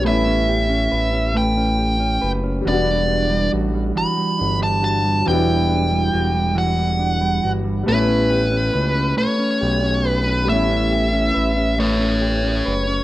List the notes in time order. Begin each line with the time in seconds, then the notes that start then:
Already playing: C#4 G4
0.01 G3 A3 B3
0.05 A1 C#4 B4 E5
0.12 E4
0.27 C#4
0.49 G4
0.69 C#4
0.92 A1 B4
1.13 C#4
1.34 A3 B4 G5
1.57 C#4
1.78 G4
2.00 C#4
2.22 F#1 B4
2.44 C#4
2.61 E3 G3 B3
2.65 E1 D4 F#4 D5
2.72 F#4
2.87 G3
3.08 D4
3.30 G3
3.53 A1 F#4
3.74 G3
3.95 G1 E3 F#4 B5
4.17 G3
4.39 G1 D4
4.60 G3 A5
4.83 F#4 A5
5.04 G3
5.22 E3 F#3 B3
5.26 E1 G3 D4 F#4 G5
5.33 E4
5.47 G3
5.69 D4
5.91 G3
6.13 E1 F#4
6.34 G3
6.55 E3 F#4 F#5
6.78 G3
6.99 D4
7.21 G3
7.43 G1 F#4
7.64 G3
7.83 G3 A3 B3 B4
7.88 A1 C#4 B4
7.94 E4
8.08 C#4
8.30 G4
8.52 C#4
8.73 C#2 B4
8.95 C#4
9.17 B1 A3 B4 C#5
9.39 C#4
9.61 B1 G4
9.83 C#4
10.05 B4
10.09 B4
10.26 C#4
10.44 G3 A3 B3
10.48 A1 C#4 B4 E5
10.55 E4
10.70 C#4
10.91 G4
11.13 C#4
11.34 A1 B4
11.57 C#4
11.78 A3 B4 C#5 E5
11.99 C#4
12.22 G4
12.43 C#4
12.66 F#1 B4
12.88 C#4